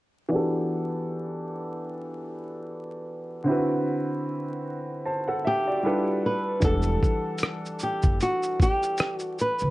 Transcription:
0.28 3.42 E3 medium
0.28 3.42 B3 medium
0.28 3.43 D4 medium
0.33 3.44 F#4 medium
0.33 3.44 G4 medium
0.33 3.45 A4 medium
3.44 5.78 D3 medium
3.44 5.79 C4 medium
3.44 5.80 E4 medium
3.49 5.03 F#4 medium
3.49 5.04 B4 medium
5.06 5.27 C5 medium
5.06 5.26 A5 medium
5.28 5.44 A4 soft
5.28 5.44 F#5 medium
5.45 6.26 G4 loud
5.45 5.66 E5 medium
5.68 6.05 F#4 soft
5.68 6.05 D5 medium
5.83 6.62 G3 medium
5.83 6.61 D4 medium
5.83 6.63 E4 medium
5.83 6.63 F4 medium
5.83 6.64 A4 medium
5.83 6.64 B4 medium
6.26 6.64 B4 medium
6.60 6.96 E1 loud
6.60 9.70 E3 medium
6.60 9.70 D4 medium
6.60 9.70 F#5 medium
6.60 kick medium
6.60 closed hi-hat medium
6.60 shaker medium
6.64 9.70 G3 medium
6.64 7.83 A4 loud
6.64 9.70 A4 medium
6.82 shaker soft
7.03 kick medium
7.03 shaker soft
7.38 closed hi-hat medium
7.38 shaker medium
7.43 cross-stick loud
7.66 shaker soft
7.80 8.19 G4 medium
7.80 shaker medium
8.03 8.18 F#1 medium
8.03 kick medium
8.03 shaker soft
8.21 8.62 F#4 medium
8.21 closed hi-hat medium
8.21 shaker medium
8.43 shaker soft
8.60 9.17 G4 loud
8.60 kick medium
8.60 shaker medium
8.83 shaker soft
8.98 cross-stick loud
8.98 closed hi-hat medium
8.98 shaker medium
9.17 9.41 F#4 loud
9.17 shaker soft
9.39 9.70 B4 medium
9.39 shaker soft
9.59 9.70 C#2 medium
9.59 shaker soft

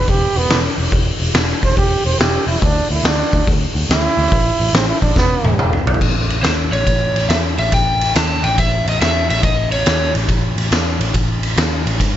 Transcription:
0.00 0.11 B4 loud
0.08 0.26 E1 loud
0.08 0.39 G4 loud
0.08 kick loud
0.08 open hi-hat medium
0.36 0.45 E1 medium
0.36 0.60 B3 loud
0.36 open hi-hat medium
0.49 0.67 E1 medium
0.49 snare loud
0.49 open hi-hat medium
0.78 0.87 E1 medium
0.78 open hi-hat medium
0.92 1.10 E1 loud
0.92 kick loud
0.92 open hi-hat medium
1.20 1.29 E1 medium
1.20 open hi-hat medium
1.34 1.52 E1 medium
1.34 snare loud
1.34 open hi-hat medium
1.63 1.72 E1 medium
1.63 1.77 C5 loud
1.63 kick medium
1.63 open hi-hat medium
1.77 1.95 E1 loud
1.77 2.05 G4 loud
1.77 kick loud
1.77 open hi-hat loud
2.05 2.14 E1 medium
2.05 2.20 C5 loud
2.05 open hi-hat medium
2.19 2.37 E1 loud
2.19 2.47 G4 loud
2.19 snare loud
2.19 open hi-hat medium
2.47 2.56 E1 loud
2.47 2.64 E4 loud
2.47 open hi-hat medium
2.62 2.80 D2 loud
2.62 2.90 D4 loud
2.62 kick loud
2.62 open hi-hat medium
2.91 2.99 D2 medium
2.91 3.07 E4 loud
2.91 open hi-hat medium
3.03 3.21 D2 medium
3.03 3.46 D4 loud
3.03 snare loud
3.03 open hi-hat medium
3.33 3.42 D2 loud
3.33 kick medium
3.33 open hi-hat medium
3.47 3.65 D2 loud
3.47 kick loud
3.47 open hi-hat medium
3.75 3.84 D2 medium
3.75 open hi-hat medium
3.89 4.07 D2 loud
3.89 4.72 E4 loud
3.89 snare loud
3.89 open hi-hat medium
4.17 4.26 D2 medium
4.17 open hi-hat medium
4.32 4.49 A1 loud
4.32 kick loud
4.32 open hi-hat medium
4.60 4.69 A1 medium
4.60 open hi-hat medium
4.73 4.91 A1 medium
4.73 4.88 C4 loud
4.73 snare loud
4.73 open hi-hat loud
4.89 5.01 E4 loud
5.02 5.11 A1 loud
5.02 5.16 D4 medium
5.02 kick medium
5.02 open hi-hat medium
5.16 5.34 E1 loud
5.16 5.59 B3 loud
5.16 kick loud
5.16 snare medium
5.44 5.53 E1 loud
5.44 high tom medium
5.58 5.76 E1 loud
5.58 mid tom loud
5.73 mid tom medium
5.86 5.95 B1 medium
5.86 floor tom loud
5.94 floor tom loud
6.01 6.41 A1 medium
6.01 kick loud
6.01 crash loud
6.30 ride medium
6.42 6.69 D#2 medium
6.42 6.51 C5 medium
6.42 snare loud
6.42 ride medium
6.71 6.85 A1 medium
6.71 7.31 C#5 medium
6.71 ride medium
6.86 7.13 A1 medium
6.86 kick loud
6.86 ride medium
7.14 7.28 A1 medium
7.14 ride medium
7.29 7.55 E2 medium
7.29 7.37 E5 medium
7.29 snare loud
7.29 ride medium
7.58 7.71 A1 medium
7.58 7.73 E5 medium
7.58 ride medium
7.72 8.12 A1 medium
7.72 8.16 G5 medium
7.72 kick loud
7.72 ride medium
8.01 ride medium
8.15 8.42 D#2 medium
8.15 8.45 A5 loud
8.15 snare loud
8.15 ride loud
8.44 8.57 A1 medium
8.44 8.58 G5 medium
8.44 ride medium
8.58 8.84 A1 medium
8.58 8.85 E5 medium
8.58 kick loud
8.58 ride medium
8.86 8.99 A1 medium
8.86 9.01 D#5 medium
8.86 ride medium
9.01 9.27 E2 medium
9.01 9.29 E5 medium
9.01 snare loud
9.01 ride medium
9.29 9.42 A1 medium
9.29 9.44 E5 medium
9.29 ride medium
9.43 9.83 A1 medium
9.43 9.70 D#5 medium
9.43 kick medium
9.43 ride medium
9.72 10.12 C#5 medium
9.72 ride medium
9.86 10.13 D#2 medium
9.86 snare loud
9.86 ride medium
10.15 10.28 A1 medium
10.15 ride medium
10.28 10.55 A1 medium
10.28 kick loud
10.28 ride medium
10.57 10.70 A1 medium
10.57 ride medium
10.71 10.98 E2 medium
10.71 snare loud
10.71 ride medium
10.99 11.13 A1 medium
10.99 ride medium
11.14 11.54 A1 medium
11.14 kick loud
11.14 ride medium
11.43 ride medium
11.56 11.83 D#2 medium
11.56 snare loud
11.56 ride medium
11.86 11.99 A1 medium
11.86 ride medium
12.00 12.17 G2 medium
12.00 kick loud
12.00 ride medium

